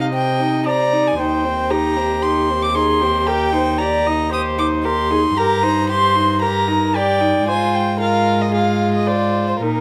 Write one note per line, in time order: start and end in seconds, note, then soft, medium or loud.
0.00 1.18 C3 soft
0.00 0.12 D#4 soft
0.00 0.67 D#5 soft
0.00 0.06 F5 medium
0.13 0.41 C4 soft
0.13 0.65 G5 medium
0.40 0.68 D#4 soft
0.65 0.94 C4 soft
0.65 1.18 D5 soft
0.65 1.08 A#5 medium
0.93 1.18 D#4 soft
1.07 1.20 G#5 medium
1.18 5.34 D#2 soft
1.18 1.46 D#4 soft
1.18 1.72 C5 medium
1.18 1.72 G5 medium
1.45 1.71 C4 soft
1.70 1.98 D#4 soft
1.70 2.74 G4 medium
1.70 2.24 A#5 medium
1.96 2.22 C4 soft
2.23 2.51 D#4 soft
2.23 2.64 C6 medium
2.50 2.77 C4 soft
2.62 2.76 D6 medium
2.75 3.03 D#4 soft
2.75 3.03 G#4 soft
2.75 3.28 C6 medium
3.01 3.27 C4 soft
3.01 3.29 G4 soft
3.27 3.54 G4 soft
3.27 3.54 A#4 medium
3.27 3.80 G5 medium
3.53 3.82 D#4 soft
3.53 3.79 C5 soft
3.79 4.08 G4 soft
3.79 4.08 D5 soft
3.79 4.32 A#5 medium
4.07 4.32 D#4 soft
4.07 4.32 D#5 soft
4.32 4.60 G4 soft
4.32 4.87 C5 medium
4.32 4.41 D#6 medium
4.58 4.86 D#4 soft
4.58 4.66 D6 medium
4.85 5.12 G4 soft
4.85 5.11 A#4 soft
4.85 5.39 C6 medium
5.11 5.37 D#4 soft
5.11 5.19 G#4 soft
5.37 7.44 G2 medium
5.37 5.65 G4 soft
5.37 5.65 A#4 medium
5.37 5.89 A#5 medium
5.63 5.91 D#4 soft
5.63 6.44 C5 medium
5.90 6.17 G4 soft
5.90 6.41 C6 medium
6.15 6.42 D#4 soft
6.42 6.70 G4 soft
6.42 6.97 A#4 medium
6.42 6.97 A#5 medium
6.68 6.96 D#4 soft
6.94 7.22 G4 soft
6.94 7.49 D5 medium
6.94 7.48 G5 medium
7.21 7.47 D#4 soft
7.48 9.59 G#2 medium
7.48 7.97 F4 soft
7.48 7.99 C5 soft
7.48 7.76 G#5 medium
7.75 8.00 G5 medium
8.00 8.53 F4 soft
8.00 8.52 A#4 medium
8.00 8.43 F5 medium
8.42 8.54 D#5 soft
8.53 9.64 F4 soft
8.53 9.09 G#4 soft
8.53 8.93 F5 soft
8.94 9.08 D#5 soft
9.07 9.61 C5 soft
9.07 9.48 D5 medium
9.48 9.54 C5 soft
9.61 9.81 A#2 soft
9.61 9.81 D#4 soft
9.61 9.81 A#4 soft